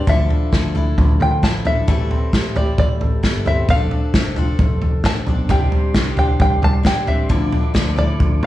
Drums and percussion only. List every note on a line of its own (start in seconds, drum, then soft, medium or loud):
0.07 kick loud
0.07 floor tom loud
0.30 floor tom medium
0.53 kick loud
0.53 snare loud
0.75 floor tom medium
0.98 kick loud
0.98 floor tom loud
1.21 floor tom medium
1.43 kick loud
1.43 snare loud
1.65 floor tom medium
1.88 kick loud
1.88 floor tom loud
2.11 floor tom medium
2.33 kick loud
2.33 snare loud
2.56 floor tom medium
2.78 kick loud
2.78 floor tom loud
3.01 floor tom medium
3.23 kick loud
3.23 snare loud
3.46 floor tom medium
3.69 kick loud
3.69 floor tom loud
3.91 floor tom medium
4.14 kick loud
4.14 snare loud
4.36 floor tom medium
4.59 kick loud
4.59 floor tom loud
4.82 floor tom medium
5.04 kick loud
5.04 snare loud
5.27 floor tom medium
5.49 kick loud
5.49 floor tom loud
5.72 floor tom medium
5.94 kick loud
5.94 snare loud
6.17 floor tom medium
6.40 kick loud
6.40 floor tom loud
6.63 floor tom medium
6.85 kick loud
6.85 snare loud
7.07 floor tom medium
7.30 kick loud
7.30 floor tom loud
7.52 floor tom medium
7.75 kick loud
7.75 snare loud
7.98 floor tom medium
8.20 kick loud
8.20 floor tom loud
8.43 floor tom medium